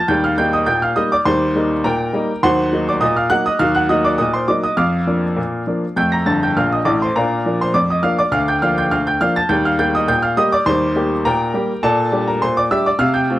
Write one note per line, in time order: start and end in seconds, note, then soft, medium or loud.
0.08 0.33 D#2 medium
0.08 0.26 G3 medium
0.08 0.23 G5 medium
0.08 0.23 G6 medium
0.24 0.38 F5 medium
0.24 0.38 F6 medium
0.38 0.54 G3 soft
0.38 0.55 A#3 soft
0.38 0.55 D#4 soft
0.38 0.52 G5 medium
0.38 0.53 G6 medium
0.53 0.67 D#5 medium
0.53 0.68 D#6 medium
0.66 0.92 A#2 medium
0.66 0.81 G5 medium
0.66 0.82 G6 medium
0.82 0.96 F5 medium
0.82 0.97 F6 medium
0.96 1.12 G3 soft
0.96 1.12 A#3 medium
0.96 1.13 D#4 soft
0.96 1.10 D#5 medium
0.96 1.11 D#6 medium
1.12 1.26 D5 medium
1.12 1.26 D6 medium
1.25 1.51 D#2 medium
1.25 1.43 G3 medium
1.25 1.81 C5 medium
1.25 1.84 C6 medium
1.56 1.72 G3 soft
1.56 1.72 A#3 soft
1.56 1.72 D#4 medium
1.84 2.09 A#2 medium
1.84 2.40 A#4 medium
1.84 2.40 G5 medium
1.84 2.43 A#5 medium
2.13 2.29 G3 soft
2.13 2.30 A#3 medium
2.13 2.30 D#4 medium
2.43 2.68 D#2 medium
2.43 2.60 F#3 medium
2.43 2.84 C5 medium
2.43 2.84 F#5 medium
2.43 2.87 C6 loud
2.72 2.89 F#3 soft
2.72 2.89 A#3 soft
2.72 2.89 D#4 medium
2.89 3.02 D5 medium
2.89 3.02 D6 medium
3.01 3.26 A#2 medium
3.01 3.15 D#5 medium
3.01 3.16 D#6 medium
3.16 3.30 F5 medium
3.16 3.31 F6 medium
3.30 3.46 F#3 soft
3.30 3.46 A#3 medium
3.30 3.47 D#4 medium
3.30 3.45 F#5 medium
3.30 3.45 F#6 loud
3.46 3.60 D#5 medium
3.46 3.60 D#6 medium
3.59 3.85 D#2 medium
3.59 3.77 F#3 soft
3.59 3.74 F5 medium
3.59 3.74 F6 loud
3.75 3.89 F#5 medium
3.75 3.89 F#6 medium
3.89 4.06 F#3 soft
3.89 4.06 A#3 soft
3.89 4.06 D#4 medium
3.89 4.04 D#5 medium
3.89 4.04 D#6 medium
4.05 4.19 D5 medium
4.05 4.19 D6 medium
4.18 4.44 A#2 medium
4.18 4.33 D#5 medium
4.18 4.33 D#6 medium
4.34 4.48 C5 medium
4.34 4.48 C6 medium
4.48 4.65 F#3 soft
4.48 4.65 A#3 soft
4.48 4.65 D#4 soft
4.48 4.63 D5 medium
4.48 4.63 D6 medium
4.63 4.78 D#5 medium
4.63 4.78 D#6 medium
4.77 5.03 F2 medium
4.77 5.93 F5 medium
4.77 5.93 D6 medium
4.77 5.96 F6 medium
5.07 5.24 F3 soft
5.07 5.24 A#3 soft
5.07 5.24 D4 soft
5.37 5.62 A#2 medium
5.67 5.83 F3 soft
5.67 5.84 A#3 soft
5.67 5.84 D4 soft
5.96 6.22 F2 medium
5.96 6.14 A3 soft
5.96 6.11 G5 medium
5.96 6.12 G6 medium
6.12 6.26 A#5 medium
6.12 6.27 A#6 medium
6.26 6.49 G1 medium
6.26 6.48 G2 medium
6.26 6.41 A5 medium
6.26 6.41 A6 medium
6.43 6.56 G5 medium
6.43 6.57 G6 medium
6.57 6.79 A#1 medium
6.57 6.79 A#2 medium
6.57 6.71 F5 medium
6.57 6.71 F6 medium
6.72 6.86 D#5 medium
6.72 6.86 D#6 medium
6.85 7.07 A1 medium
6.85 7.08 A2 medium
6.85 7.00 D5 medium
6.85 7.00 D6 medium
7.02 7.16 C5 medium
7.02 7.16 C6 medium
7.16 7.41 A#2 medium
7.16 7.33 D4 soft
7.16 7.57 A#4 medium
7.16 7.57 F5 medium
7.16 7.60 A#5 medium
7.46 7.62 F3 soft
7.46 7.62 A#3 soft
7.46 7.62 D4 soft
7.61 7.75 C5 medium
7.61 7.75 C6 medium
7.74 7.99 F2 medium
7.74 7.88 D5 medium
7.74 7.89 D6 medium
7.90 8.04 D#5 medium
7.90 8.04 D#6 medium
8.03 8.19 F3 soft
8.03 8.20 A#3 soft
8.03 8.20 D4 soft
8.03 8.17 F5 medium
8.03 8.18 F6 medium
8.19 8.32 D5 medium
8.19 8.33 D6 medium
8.32 8.57 D2 medium
8.32 8.46 F5 medium
8.32 8.47 F6 medium
8.48 8.62 G5 medium
8.48 8.62 G6 medium
8.62 8.79 F3 soft
8.62 8.79 A#3 soft
8.62 8.79 D4 soft
8.62 8.76 F5 medium
8.62 8.77 F6 medium
8.78 8.91 G5 medium
8.78 8.92 G6 medium
8.91 9.16 D2 medium
8.91 9.06 F5 medium
8.91 9.06 F6 medium
9.07 9.21 G5 medium
9.07 9.21 G6 medium
9.21 9.37 F3 medium
9.21 9.38 A#3 soft
9.21 9.38 D4 medium
9.21 9.35 F5 medium
9.21 9.35 F6 loud
9.36 9.50 A5 medium
9.36 9.50 A6 medium
9.49 9.74 D#2 medium
9.49 9.67 G3 medium
9.49 9.64 G5 medium
9.49 9.64 G6 medium
9.65 9.79 F5 medium
9.65 9.80 F6 medium
9.79 9.95 G3 soft
9.79 9.95 A#3 soft
9.79 9.96 G4 medium
9.79 9.93 G5 medium
9.79 9.94 G6 loud
9.95 10.09 D#5 medium
9.95 10.09 D#6 medium
10.08 10.33 A#2 medium
10.08 10.22 G5 medium
10.08 10.23 G6 loud
10.23 10.37 F5 medium
10.23 10.37 F6 medium
10.37 10.53 G3 soft
10.37 10.54 A#3 soft
10.37 10.54 G4 medium
10.37 10.52 D#5 medium
10.37 10.52 D#6 loud
10.52 10.67 D5 medium
10.52 10.67 D6 medium
10.66 10.91 D#2 medium
10.66 10.84 G3 medium
10.66 11.22 C5 medium
10.66 11.25 C6 loud
10.96 11.12 G3 soft
10.96 11.12 A#3 medium
10.96 11.13 G4 medium
11.25 11.50 A#2 medium
11.25 11.81 A#4 medium
11.25 11.81 G5 medium
11.25 11.84 A#5 medium
11.54 11.70 G3 medium
11.54 11.71 A#3 soft
11.54 11.71 G4 medium
11.83 12.08 A#2 medium
11.83 12.25 A4 medium
11.83 12.25 D5 medium
11.83 12.27 A5 loud
12.12 12.29 G3 soft
12.12 12.29 D4 soft
12.12 12.29 G4 soft
12.28 12.42 A#4 medium
12.28 12.42 A#5 medium
12.42 12.67 A#2 medium
12.42 12.56 C5 medium
12.42 12.57 C6 medium
12.57 12.72 D5 medium
12.57 12.72 D6 medium
12.71 12.87 G3 soft
12.71 12.88 D4 soft
12.71 12.88 G4 medium
12.71 12.86 E5 medium
12.71 12.86 E6 medium
12.86 13.01 D5 medium
12.86 13.01 D6 medium
12.99 13.25 C3 medium
12.99 13.15 F5 medium
12.99 13.15 F6 loud
13.14 13.39 G5 medium
13.14 13.39 G6 medium
13.30 13.39 A3 soft
13.30 13.39 C4 soft
13.30 13.39 F4 soft